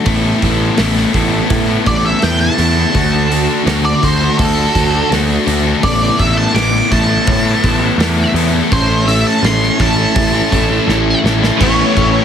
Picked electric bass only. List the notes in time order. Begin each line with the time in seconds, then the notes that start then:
0.06 A1
0.43 A1
0.78 A1
1.14 A1
1.50 A2
1.86 A1
2.23 E2
2.58 E2
2.95 D2
3.66 D2
4.03 D2
4.39 D2
4.75 D2
5.11 D2
5.47 D2
5.84 A1
6.19 A1
6.54 A1
6.91 A1
7.27 A2
7.64 A1
7.98 E2
8.34 E2
8.72 A1
9.42 A1
9.80 A1
10.16 A1
10.52 A1
10.87 A1
11.24 A1
11.61 A1
11.97 A1